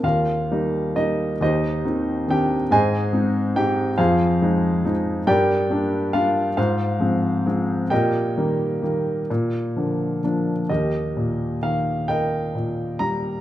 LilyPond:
<<
  \new Staff \with { instrumentName = "Grand piano" } { \time 6/8 \key ees \major \tempo 4. = 45 << { f''4 ees''8 ees''4 g''8 | aes''4 g''8 f''4 r8 | g''4 f''8 f''4. | g''2~ g''8 r8 |
ees''4 f''8 g''4 bes''8 | } \\ { <f' bes'>4 r8 <ees' g' c''>4 g'8 | <aes' c'' ees''>4 g'8 <f' aes' c''>4 r8 | <g' bes' d''>4 f'8 <f' c''>4. | <g' bes' ees''>2~ <g' bes' ees''>8 r8 |
<g' bes'>4. <bes' ees''>4. | } >> }
  \new Staff \with { instrumentName = "Grand piano" } { \clef bass \time 6/8 \key ees \major ees,8 <g bes ees'>8 <g bes ees'>8 ees,8 <ees c' ees'>8 <ees c' d'>8 | aes,8 <aes c' ees'>8 <aes c' ees'>8 f,8 <f aes ees'>8 <f aes ees'>8 | g,8 <g bes d'>8 <g bes d'>8 aes,8 <f aes c'>8 <f aes c'>8 | bes,8 <ees g bes>8 <ees g bes>8 bes,8 <d f bes>8 <f bes d'>8 |
ees,8 bes,8 ees4 bes,8 g8 | }
>>